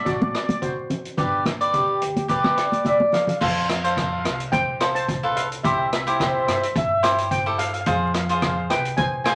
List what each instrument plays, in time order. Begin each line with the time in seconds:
Already playing: cavaquinho F#4 A4 D5
0.05 upright bass A1, steel pan F#4 D5, kick, closed hi-hat
0.13 steel pan D5
0.21 steel pan D5, high conga
0.28 steel pan D5
0.35 steel pan D5, cross-stick, closed hi-hat
0.42 steel pan D5
0.49 steel pan D5, closed hi-hat, high conga
0.62 steel pan F#4 C5, kick, closed hi-hat
0.90 closed hi-hat, low conga
1.05 closed hi-hat
1.17 upright bass G1, steel pan D4 B4, cavaquinho G4 B4 D5, kick, closed hi-hat, low conga
1.46 cross-stick, closed hi-hat, high conga, low conga
1.61 cavaquinho G4 B4 D5, closed hi-hat
1.73 horn section G4, kick, closed hi-hat
2.02 upright bass D2, closed hi-hat
2.16 closed hi-hat, high conga
2.28 upright bass D2, cavaquinho G4 B4 D5, horn section B4, kick, closed hi-hat
2.44 cross-stick, high conga
2.57 horn section D5, cross-stick, closed hi-hat
2.72 closed hi-hat, high conga
2.85 steel pan G4 E5, horn section D5, kick, closed hi-hat, high conga
3.00 high conga
3.13 steel pan A4 F5, cross-stick, closed hi-hat, low conga
3.27 steel pan F5, closed hi-hat, low conga
3.37 cavaquinho F4, steel pan F5
3.41 upright bass F2, cavaquinho A4 C5, steel pan F5, kick, crash
3.51 steel pan F5
3.59 steel pan F5
3.66 steel pan F5, cross-stick, closed hi-hat
3.73 steel pan F5
3.82 cavaquinho F4 A4 C5, steel pan F5, closed hi-hat
3.89 steel pan F5
3.96 steel pan F5, kick, cross-stick, closed hi-hat
4.04 steel pan F5
4.13 steel pan F5
4.19 steel pan F5
4.25 upright bass C2, steel pan F5, cross-stick, closed hi-hat
4.33 steel pan F5
4.40 closed hi-hat
4.52 upright bass C2, steel pan C5 G5, kick, closed hi-hat
4.81 cavaquinho F4 A4 C5, cross-stick, closed hi-hat
4.95 steel pan C5 A5, closed hi-hat
5.09 kick, closed hi-hat
5.23 cavaquinho F4 A4 B4
5.36 steel pan A4 F5, closed hi-hat
5.52 closed hi-hat
5.63 upright bass C2, cavaquinho E4 G4 C5, steel pan G4 E5, kick, closed hi-hat
5.72 steel pan E5
5.79 steel pan E5
5.86 steel pan E5
5.93 steel pan E5, cross-stick, closed hi-hat
6.01 steel pan E5
6.07 cavaquinho E4 G4 C5, steel pan E5, closed hi-hat
6.16 horn section C5, steel pan E5
6.20 steel pan E5, kick, cross-stick, closed hi-hat
6.31 steel pan E5
6.39 steel pan E5
6.46 upright bass G2, steel pan E5, cross-stick, closed hi-hat
6.54 steel pan E5
6.61 steel pan E5, closed hi-hat
6.76 upright bass G2, horn section E5, kick, closed hi-hat
7.03 cavaquinho E4 G4 C5, cross-stick, closed hi-hat
7.18 closed hi-hat
7.31 steel pan C5 G5, kick, closed hi-hat
7.46 cavaquinho E4 G4 A4
7.58 steel pan A4 F5, closed hi-hat
7.66 steel pan F5
7.74 steel pan F5, closed hi-hat
7.81 steel pan F5
7.86 upright bass F2, cavaquinho F4 G#4 C5, steel pan F5, kick, closed hi-hat
7.96 steel pan F5
8.04 steel pan F5
8.10 steel pan F5, cross-stick, closed hi-hat
8.18 steel pan F5
8.26 cavaquinho F4, steel pan F5, closed hi-hat
8.30 cavaquinho G#4 C5
8.34 steel pan F5
8.40 steel pan F5, kick, cross-stick, closed hi-hat
8.47 steel pan F5
8.57 steel pan F5
8.70 upright bass C2, steel pan B4 G5, cross-stick, closed hi-hat
8.85 closed hi-hat
8.97 upright bass C2, steel pan C5 G#5, kick, closed hi-hat
9.24 cavaquinho F4 G#4 C5, steel pan C5 G#5, cross-stick, closed hi-hat